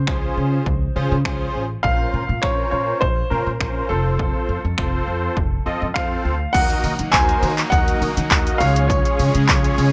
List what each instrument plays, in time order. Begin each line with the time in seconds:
Already playing: grand piano C5
0.07 upright bass C#2, analog polysynth C#4 F4 G#4 C5, finger snap, kick
0.37 upright bass C#3
0.66 upright bass C#2, kick
0.96 upright bass C#3, analog polysynth C#4 F4 G#4 C5
1.12 upright bass C#3
1.25 upright bass C#2, analog polysynth C#4 F4 G#4 C5, finger snap, kick
1.55 upright bass A1
1.83 upright bass A#1, analog polysynth C#4 F4 A#4 C5, grand piano F5, kick
2.14 upright bass A#2
2.29 upright bass A#2
2.42 upright bass A#1, analog polysynth C#4 F4 A#4 C5, grand piano C#5, finger snap, kick
2.71 upright bass A#2, grand piano C#5
3.01 upright bass A#1, grand piano C5, kick
3.30 upright bass A#2, analog polysynth C#4 F4 A#4 C5, grand piano A#4
3.47 upright bass A#2
3.60 upright bass A#1, analog polysynth C#4 F4 A#4 C5, finger snap, kick
3.89 upright bass F1, analog polysynth C4 F4 A4 C5, grand piano A4
4.19 kick
4.49 upright bass F2
4.65 upright bass F2
4.78 upright bass F1, analog polysynth C4 F4 A4 C5, finger snap, kick
5.08 upright bass F2
5.37 upright bass F1, kick
5.66 upright bass F2, analog polysynth C4 F4 A4 D#5
5.82 upright bass F2
5.94 analog polysynth C4 F4 A4 C5, grand piano F5, finger snap, kick
6.25 upright bass D2
6.53 upright bass D#2, supersaw synth F#3 A#3 D#4, analog polysynth A#3 D#4 F#4 A#4 D#5, grand piano F#5, kick, crash, tambourine, shaker
6.70 closed hi-hat, shaker
6.84 upright bass D#3, open hi-hat, tambourine, shaker
6.99 upright bass D#3, closed hi-hat, shaker
7.12 upright bass D#2, analog polysynth A#3 D#4 F#4 A#4 C5, grand piano G#5, kick, clap, tambourine, shaker
7.29 closed hi-hat, shaker
7.43 upright bass D#3, open hi-hat, tambourine, shaker
7.58 clap, closed hi-hat, shaker
7.70 upright bass D#2, analog polysynth A#3 D#4 F#4 A#4 D#5, grand piano F#5, kick, tambourine, shaker
7.88 closed hi-hat, shaker
8.02 upright bass D#3, open hi-hat, shaker
8.17 upright bass D#3, closed hi-hat, shaker
8.31 upright bass D#2, analog polysynth A#3 D#4 F#4 A#4 D#5, kick, clap, tambourine, shaker
8.47 closed hi-hat, shaker
8.58 upright bass C#2, supersaw synth C#3 G#3 C#4 G#4, analog polysynth C#4 F4 G#4 C#5, grand piano F5, open hi-hat, tambourine, shaker
8.76 closed hi-hat, shaker
8.88 grand piano C#5, kick, tambourine, shaker
9.05 closed hi-hat, shaker
9.19 upright bass C#3, open hi-hat, tambourine, shaker
9.35 upright bass C#3, closed hi-hat, shaker
9.48 upright bass C#2, analog polysynth C#4 F4 G#4 C#5, kick, clap, tambourine, shaker
9.64 closed hi-hat, shaker
9.78 upright bass C#3, open hi-hat, tambourine, shaker